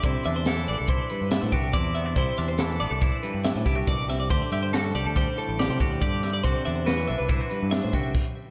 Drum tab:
CC |----------|----------|----------|--------x-|
HH |xxxxxxxxxx|xxxxxxxxxx|xxxxxxxxxx|xxxxxxxx--|
SD |--o---o---|--o---o--o|--o-o-o--o|--o---o---|
BD |o---o--oo-|o---o--oo-|o---o--oo-|o---o--oo-|